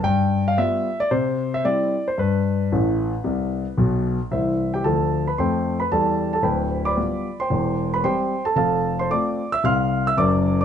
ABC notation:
X:1
M:4/4
L:1/16
Q:"Swing" 1/4=112
K:C
V:1 name="Grand piano"
g3 f e3 d c3 e d3 c | B12- B2 z2 | [Ece]3 [Gg] [Aa]3 [Bb] [cgc']3 [Bb] [Aa]3 [Aa] | [Bgb]3 [dbd']4 [cgc']4 [Bb] [cgc']3 [Aa] |
[Afa]3 [cc'] [dd']3 [ee'] [fc'f']3 [ee'] [dd']3 d' |]
V:2 name="Grand piano" clef=bass
G,,4 [G,B,F]4 C,4 [G,CE]4 | G,,4 [A,,,A,,]4 [C,,C,]4 [B,,,B,,]4 | [C,,E,]4 [D,,F,]4 [F,,A,]4 [E,,G,]4 | [D,,,D,,]4 [G,B,F]4 [E,,,E,,]4 [G,CG]4 |
[F,,,F,,]4 [A,CF]4 [C,,C,]4 [^F,,,^F,,]4 |]